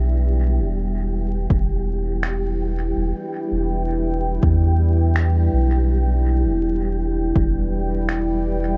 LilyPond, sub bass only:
\new Staff \with { instrumentName = "Sub bass" } { \clef bass \time 4/4 \key e \minor \tempo 4 = 82 b,,8. e,,4~ e,,16 e,,2 | e,,16 r8 e,,4~ e,,16 e,4. b,,8~ | b,,8. e,,4~ e,,16 e,,2 | }